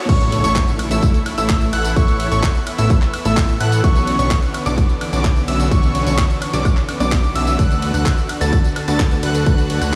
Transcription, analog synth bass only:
0.09 0.42 A1 medium
0.44 0.59 A1 medium
0.91 1.06 A1 medium
1.38 1.71 A1 loud
1.73 1.94 A1 medium
1.96 2.29 A1 loud
2.32 2.47 A1 loud
2.79 2.94 A1 medium
3.25 3.58 A1 loud
3.61 3.82 A2 loud
3.84 4.17 B1 loud
4.19 4.34 B1 loud
4.66 4.81 B1 medium
5.13 5.46 B1 loud
5.48 5.69 B1 loud
5.71 6.04 B1 loud
6.07 6.22 B1 loud
6.53 6.68 B1 medium
7.00 7.33 B1 loud
7.35 7.57 B1 loud
7.59 7.92 D2 loud
7.94 8.09 D2 loud
8.41 8.56 D2 loud
8.88 9.21 D2 loud
9.23 9.44 D2 loud
9.46 9.79 D2 loud
9.82 9.95 D2 medium

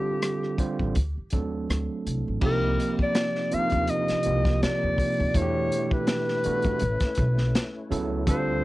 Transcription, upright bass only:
0.59 muted upright bass stroke soft
0.80 0.94 A1 medium
0.97 1.15 D2 medium
1.17 muted upright bass stroke soft
1.34 1.66 D#2 medium
1.69 1.88 D2 medium
2.07 2.25 C2 medium
2.28 2.41 A1 medium
2.43 2.76 C2 medium
3.54 muted upright bass stroke soft
3.73 3.87 D#2 medium
4.10 muted upright bass stroke soft
4.26 4.59 C2 medium
4.63 muted upright bass stroke soft
4.83 4.97 D#2 medium
5.20 5.34 D2 medium
5.35 5.68 E2 medium
6.46 muted upright bass stroke soft
6.65 6.80 E2 medium
6.82 7.00 A1 medium
7.02 muted upright bass stroke soft
7.19 7.51 B1 medium
7.91 8.24 C#2 medium
8.28 8.61 D2 loud

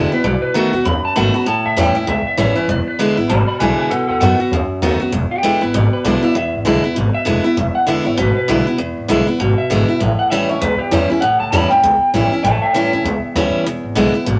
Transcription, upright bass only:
0.24 0.40 B1 medium
0.42 muted upright bass stroke medium
0.55 0.70 B1 medium
0.72 0.83 D#2 medium
0.86 1.01 D#2 medium
1.05 muted upright bass stroke medium
1.17 1.32 G#1 medium
1.46 1.62 A1 medium
1.65 1.76 C#2 medium
1.77 1.93 E2 medium
2.08 2.24 C#2 medium
2.26 muted upright bass stroke medium
2.38 2.54 A1 medium
2.68 2.84 E1 loud
2.87 muted upright bass stroke medium
2.99 3.15 E1 medium
3.18 3.28 G#1 medium
3.30 3.46 G#1 loud
3.48 muted upright bass stroke medium
3.61 3.76 B1 medium
3.91 4.07 B1 loud
4.09 4.20 D#2 medium
4.21 4.37 F#2 medium
4.52 4.68 D#2 medium
4.70 muted upright bass stroke medium
4.82 4.98 D#2 medium
5.01 muted upright bass stroke medium
5.12 5.28 E1 medium
5.31 muted upright bass stroke medium
5.43 5.59 E1 medium
5.62 5.72 G#1 medium
5.74 5.90 G#1 loud
5.93 muted upright bass stroke medium
6.05 6.20 B1 medium
6.23 muted upright bass stroke medium
6.35 6.51 E1 loud
6.54 6.64 G#1 medium
6.65 6.81 B1 medium
6.97 7.12 G#1 medium
7.15 muted upright bass stroke medium
7.27 7.42 E1 medium
7.45 muted upright bass stroke medium
7.57 7.73 E1 medium
7.76 muted upright bass stroke medium
7.88 8.03 E1 medium
8.07 8.17 G#1 medium
8.19 8.34 G#1 medium
8.37 muted upright bass stroke medium
8.49 8.65 B1 medium
8.68 muted upright bass stroke medium
8.79 8.95 E1 loud
8.98 9.08 G#1 medium
9.10 9.26 B1 medium
9.28 muted upright bass stroke medium
9.41 9.56 G#1 medium
9.59 muted upright bass stroke medium
9.71 9.86 G#1 medium
10.01 10.16 A1 loud
10.19 muted upright bass stroke medium
10.31 10.47 A1 medium
10.49 10.60 C#2 medium
10.62 10.77 C#2 loud
10.80 muted upright bass stroke medium
10.92 11.08 E2 medium
11.11 muted upright bass stroke medium
11.23 11.38 A1 medium
11.41 11.51 C#2 medium
11.53 11.68 E2 medium
11.83 11.99 C#2 medium
12.01 muted upright bass stroke medium
12.14 12.29 A1 medium
12.32 muted upright bass stroke medium
12.44 12.60 A1 medium
12.62 muted upright bass stroke medium
12.74 12.90 A1 medium
12.93 13.03 C#2 medium
13.04 13.20 C#2 loud
13.23 muted upright bass stroke medium
13.35 13.51 D2 medium
13.54 muted upright bass stroke medium
13.65 13.81 E1 medium
13.83 13.94 G#1 medium
13.96 14.12 B1 medium
14.14 muted upright bass stroke medium
14.27 14.39 G#1 medium

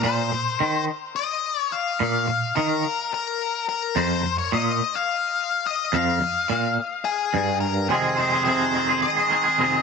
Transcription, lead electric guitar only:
0.03 0.84 C5 medium
1.16 1.61 D#5 medium
1.61 1.74 C#5 medium
1.72 2.59 F5 loud
2.56 3.13 A#4 loud
3.14 3.65 A#4 medium
3.69 3.98 A#4 medium
3.97 4.38 C5 medium
4.38 4.52 C#5 medium
4.53 4.96 D#5 loud
4.95 5.67 F5 loud
5.67 5.95 D#5 medium
5.94 7.30 F5 medium
7.05 7.60 G#4 medium
7.60 7.89 A#4 medium
7.89 8.16 G#4 medium
8.17 8.44 C5 medium
8.45 9.02 C5 medium
9.02 9.82 D#5 medium

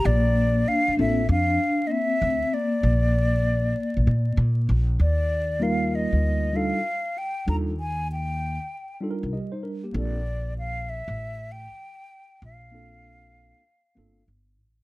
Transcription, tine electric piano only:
0.97 1.22 A#3 medium
0.97 1.23 C4 medium
0.97 1.23 D4 medium
0.97 1.23 F4 medium
0.97 1.24 A4 medium
5.60 6.49 G3 medium
5.60 6.50 A#3 medium
5.60 6.50 D#4 medium
5.60 6.51 F4 medium
5.60 6.51 A#4 medium
6.53 6.79 G3 medium
6.53 6.79 D4 medium
6.53 6.79 D#4 medium
6.53 6.80 F4 medium
6.53 6.80 A4 medium
7.46 7.71 G3 medium
7.46 7.72 D4 medium
7.46 7.72 D#4 medium
7.46 7.73 F4 medium
7.46 7.73 A4 medium
9.01 9.90 G3 medium
9.01 9.33 D4 medium
9.01 9.33 D#4 medium
9.01 9.33 F4 medium
9.01 9.11 A4 medium
9.11 9.37 A#4 medium
9.33 9.53 G4 soft
9.33 9.52 D#5 medium
9.52 9.63 D#4 medium
9.52 9.63 C5 medium
9.63 9.83 D4 medium
9.63 9.83 A#4 medium
9.84 9.91 A#3 soft
9.84 10.13 G4 medium
9.93 10.18 A#3 medium
9.93 10.19 C4 medium
9.93 10.19 D4 medium
9.93 10.20 F4 medium
9.93 10.20 A4 medium
12.71 13.61 A#3 medium
12.71 13.61 C4 medium
12.71 13.62 D4 medium
12.71 13.62 F4 soft
12.71 13.63 A4 medium
13.95 14.21 A#3 medium
13.95 14.21 C4 medium
13.95 14.21 D4 medium
13.95 14.22 F4 medium
13.95 14.22 A4 medium

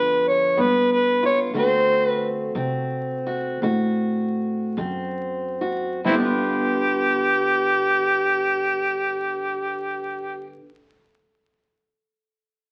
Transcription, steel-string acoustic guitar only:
0.00 0.19 G2 medium
0.00 1.52 D3 medium
0.00 0.56 B3 medium
0.00 1.55 D4 medium
0.00 1.21 F4 medium
0.57 1.15 G2 medium
0.57 1.50 B3 medium
1.23 1.51 F4 medium
1.54 2.14 D3 medium
1.54 6.00 A3 medium
1.54 2.55 C4 medium
1.54 3.25 F#4 medium
2.55 3.18 D3 medium
2.55 4.77 C4 medium
3.27 3.62 F#4 medium
3.63 4.31 D3 medium
3.63 5.60 F#4 medium
4.77 5.52 D3 medium
4.77 6.00 C4 medium
5.61 6.00 F#4 medium
6.04 10.55 G2 medium
6.10 10.60 D3 medium
6.15 10.65 B3 medium
6.19 10.70 D4 medium
6.25 10.75 F4 medium

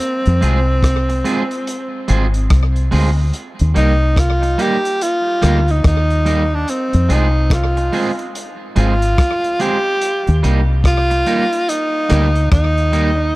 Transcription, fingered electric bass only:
0.27 0.41 F2 loud
0.43 1.22 C2 medium
2.10 2.47 G#1 medium
2.51 2.89 C2 medium
2.93 3.31 D2 medium
3.61 3.75 D#2 loud
3.77 4.56 C2 loud
5.44 5.81 D2 medium
5.85 6.64 D#2 medium
6.94 7.08 F2 loud
7.10 7.89 C2 medium
8.77 9.15 G#1 medium
10.28 10.42 D#2 loud
10.44 11.23 C2 medium
12.11 12.49 D2 medium
12.52 13.31 D#2 medium

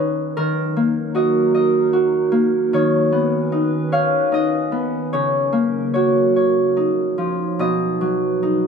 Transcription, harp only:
0.00 0.43 B3 medium
0.00 0.42 C#4 medium
0.00 2.67 D#4 medium
0.00 0.43 B4 medium
0.00 1.47 C#5 medium
0.00 0.43 B5 medium
0.37 2.72 D#3 medium
0.37 2.49 A#4 medium
0.77 2.31 A#3 medium
1.15 1.93 F#4 medium
1.15 1.54 D#5 medium
1.55 3.33 D#5 medium
1.93 3.99 F#4 medium
2.32 3.18 A#3 medium
2.73 5.18 D#3 medium
2.73 3.92 C#5 medium
3.12 4.71 B3 medium
3.52 4.32 D#4 medium
3.92 5.12 C#5 medium
3.92 5.59 F5 medium
4.32 6.76 D#4 medium
4.32 6.12 D#5 medium
4.72 5.59 B3 medium
5.13 6.82 C#3 medium
5.13 5.93 C#5 medium
5.53 7.65 A#3 medium
5.94 7.24 F#4 medium
5.94 6.36 C#5 medium
6.36 8.27 C#5 medium
6.77 8.42 D#4 medium
7.18 7.64 F3 medium
7.59 8.67 B2 medium
7.59 8.67 D#5 medium
8.01 8.67 F#3 medium
8.43 8.67 D#4 medium

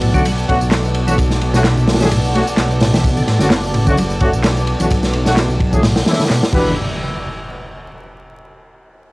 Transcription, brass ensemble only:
0.14 0.22 A3 medium
0.14 0.22 C#4 medium
0.14 0.22 D4 medium
0.14 0.22 F#4 loud
0.48 0.57 A3 loud
0.48 0.57 C#4 medium
0.48 0.57 D4 medium
0.48 0.57 F#4 loud
1.07 1.15 A3 medium
1.07 1.15 C#4 medium
1.07 1.15 D4 medium
1.07 1.15 F#4 medium
1.54 1.62 A3 loud
1.54 1.62 C#4 medium
1.54 1.62 D4 medium
1.54 1.62 F#4 loud
2.01 2.08 A3 medium
2.01 2.08 C#4 medium
2.01 2.08 D4 medium
2.01 2.08 G#4 medium
2.34 2.44 A3 loud
2.34 2.44 C#4 medium
2.34 2.43 D4 medium
2.34 2.44 F#4 loud
3.40 3.48 A3 medium
3.40 3.48 C#4 medium
3.40 3.48 D4 medium
3.40 3.48 F#4 medium
3.87 3.94 A3 loud
3.87 3.94 C#4 medium
3.87 3.94 D4 medium
3.87 3.94 F#4 loud
4.21 4.30 A3 medium
4.21 4.30 C#4 medium
4.21 4.30 D4 medium
4.21 4.30 F#4 loud
4.80 4.87 A3 medium
4.80 4.87 C#4 medium
4.80 4.87 D4 medium
4.80 4.87 F#4 medium
5.26 5.34 A3 medium
5.26 5.34 C#4 medium
5.26 5.34 D4 medium
5.26 5.34 F#4 loud
5.73 5.80 A3 medium
5.73 5.80 C#4 medium
5.73 5.80 D4 medium
5.73 5.80 G#4 medium
6.07 6.21 A3 medium
6.07 6.21 C#4 medium
6.07 6.21 D4 medium
6.07 6.21 E4 medium
6.53 6.71 D4 medium
6.53 6.71 F#4 medium
6.53 6.71 G4 medium
6.53 6.71 B4 loud

